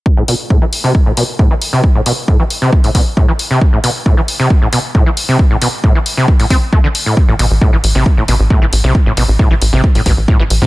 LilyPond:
<<
  \new Staff \with { instrumentName = "Acid bass" } { \clef bass \time 4/4 \key a \minor \tempo 4 = 135 r16 a,16 b,16 r16 a,16 e16 r16 c16 r16 a,16 b,16 r16 a,16 e16 r16 c16 | r16 a,16 b,16 r16 a,16 e16 r16 c16 r16 a,16 b,16 r16 a,16 e16 r16 c16 | r16 a,16 b,16 r16 a,16 e16 r16 c16 r16 a,16 b,16 r16 a,16 e16 r16 c16 | r16 a,16 b,16 r16 a,16 e16 r16 c16 r16 a,16 c'16 r16 a16 d16 r16 a,16 |
r16 a,16 b,16 r16 a,16 e16 r16 c16 r16 a,16 b,16 r16 a,16 e16 r16 c16 | r16 a,16 b,16 r16 a,16 e16 r16 c16 r16 a,16 b,16 r16 a,16 e16 r16 c16 | }
  \new Staff \with { instrumentName = "Analog synth bass" } { \clef bass \time 4/4 \key a \minor r1 | r1 | r1 | r1 |
r16 a,,16 a,,16 a,,16 r16 a,,16 a,,16 a,,16 r16 a,,16 a,,16 a,,16 r16 a,,16 a,,16 b,,16 | r16 a,,16 a,,16 a,,16 r16 a,,16 a,,16 a,,16 r16 a,,16 a,,16 a,,16 r16 a,,16 a,,16 a,16 | }
  \new DrumStaff \with { instrumentName = "Drums" } \drummode { \time 4/4 bd8 hho8 bd8 hho8 bd8 hho8 bd8 hho8 | bd8 hho8 bd8 hho8 bd16 hho16 <hho bd>8 bd8 hho8 | bd8 hho8 bd8 hho8 bd8 hho8 bd8 hho8 | bd8 hho8 bd8 hho8 bd16 hho16 <hho bd>8 bd8 hho8 |
bd8 hho8 bd8 hho8 bd8 hho8 bd8 hho8 | bd8 hho8 bd8 hho8 bd16 hho16 <hho bd>8 bd8 hho8 | }
>>